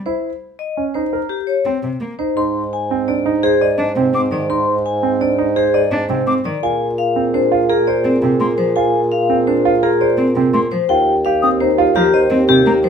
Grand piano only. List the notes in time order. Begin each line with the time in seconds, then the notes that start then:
0.06 E4
0.77 C#4
0.95 D#4
1.13 A#4
1.66 C4
2.19 D#4
2.37 D#4
2.91 C4
3.08 D4
3.26 D#4
3.44 C5
3.61 D5
3.97 C4
4.49 D#4
5.03 C4
5.21 D4
5.38 D#4
5.56 C5
5.74 D5
6.10 C4
6.63 F4
7.16 C4
7.34 D4
7.52 F4
7.69 A#4
7.88 C5
8.24 C4
8.76 F4
9.29 C4
9.48 D4
9.65 F4
9.83 A#4
10.01 C5
10.37 C4
10.90 F4
11.26 G4
11.43 C4
11.61 D#4
11.78 F4
11.96 A#4
12.14 C5
12.49 C4